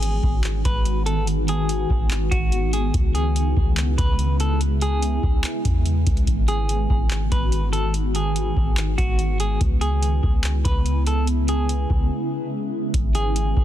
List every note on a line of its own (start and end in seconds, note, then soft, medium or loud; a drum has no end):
0.00 0.21 G#1 loud
0.00 2.91 D#3 medium
0.00 9.57 G#3 medium
0.00 9.57 B3 medium
0.00 2.91 F#4 medium
0.00 0.61 G#4 medium
0.00 closed hi-hat medium
0.23 0.63 G#1 loud
0.23 kick medium
0.44 clap loud
0.44 closed hi-hat medium
0.65 1.86 G#1 loud
0.65 1.04 B4 medium
0.65 kick loud
0.65 closed hi-hat medium
0.85 closed hi-hat medium
1.06 1.26 A4 medium
1.06 closed hi-hat medium
1.27 closed hi-hat medium
1.48 2.28 G#4 medium
1.48 closed hi-hat medium
1.69 closed hi-hat medium
1.90 2.30 G#1 loud
1.90 kick medium
2.11 clap loud
2.11 closed hi-hat medium
2.31 2.92 G#1 loud
2.31 2.71 F#4 medium
2.31 kick loud
2.31 closed hi-hat medium
2.52 closed hi-hat medium
2.73 2.93 G#4 medium
2.73 closed hi-hat medium
2.94 3.54 C#2 loud
2.94 6.24 C#3 medium
2.94 6.24 E4 medium
2.94 kick loud
2.94 closed hi-hat medium
3.15 3.94 G#4 medium
3.15 closed hi-hat medium
3.36 closed hi-hat medium
3.57 3.97 C#2 loud
3.57 kick medium
3.77 clap loud
3.77 closed hi-hat medium
3.98 5.19 C#2 loud
3.98 4.37 B4 medium
3.98 kick loud
3.98 closed hi-hat medium
4.19 closed hi-hat medium
4.40 4.60 A4 medium
4.40 closed hi-hat medium
4.61 closed hi-hat medium
4.81 5.82 G#4 medium
4.81 closed hi-hat medium
5.02 closed hi-hat medium
5.23 5.43 C#2 loud
5.23 kick loud
5.44 clap loud
5.44 closed hi-hat medium
5.65 6.05 E2 loud
5.65 kick loud
5.65 closed hi-hat medium
5.86 closed hi-hat medium
6.07 6.27 C#2 loud
6.07 kick loud
6.07 closed hi-hat medium
6.17 closed hi-hat soft
6.27 6.87 G#1 loud
6.27 9.57 D#3 medium
6.27 9.58 F#4 medium
6.27 kick loud
6.27 closed hi-hat medium
6.48 7.28 G#4 medium
6.48 closed hi-hat medium
6.69 closed hi-hat medium
6.90 7.30 G#1 loud
6.90 kick loud
7.11 clap loud
7.11 closed hi-hat medium
7.32 8.53 G#1 loud
7.32 7.71 B4 medium
7.32 kick loud
7.32 closed hi-hat medium
7.52 closed hi-hat medium
7.73 7.93 A4 medium
7.73 closed hi-hat medium
7.94 closed hi-hat medium
8.15 8.95 G#4 medium
8.15 closed hi-hat medium
8.36 closed hi-hat medium
8.57 8.97 G#1 medium
8.57 kick loud
8.77 clap loud
8.77 closed hi-hat medium
8.98 9.58 G#1 loud
8.98 9.37 F#4 medium
8.98 kick loud
8.98 closed hi-hat medium
9.19 closed hi-hat medium
9.40 9.60 G#4 medium
9.40 closed hi-hat medium
9.61 10.21 C#2 loud
9.61 12.91 C#3 medium
9.61 12.91 G#3 medium
9.61 12.91 B3 medium
9.61 12.91 E4 medium
9.61 kick loud
9.61 closed hi-hat medium
9.81 10.61 G#4 medium
9.81 closed hi-hat medium
10.03 closed hi-hat medium
10.23 10.63 C#2 loud
10.23 kick loud
10.44 clap loud
10.44 closed hi-hat medium
10.65 11.86 C#2 loud
10.65 11.04 B4 medium
10.65 kick loud
10.65 closed hi-hat medium
10.86 closed hi-hat medium
11.07 11.27 A4 medium
11.07 closed hi-hat medium
11.27 closed hi-hat medium
11.48 12.49 G#4 medium
11.48 closed hi-hat medium
11.69 closed hi-hat medium
11.90 12.10 C#2 loud
11.90 kick medium
12.94 13.54 G#1 loud
12.94 13.64 D#3 medium
12.94 13.64 G#3 medium
12.94 13.64 B3 medium
12.94 13.64 F#4 medium
12.94 kick loud
12.94 closed hi-hat medium
13.15 13.64 G#4 medium
13.15 closed hi-hat medium
13.36 closed hi-hat medium
13.57 13.64 G#1 loud
13.57 kick loud